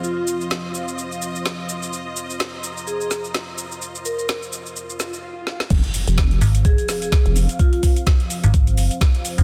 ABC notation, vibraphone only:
X:1
M:4/4
L:1/16
Q:"Swing 16ths" 1/4=127
K:Fm
V:1 name="Vibraphone"
F F z12 z2 | z8 A A z6 | z2 B B z12 | z8 A A z A A z3 |
F F z12 z2 |]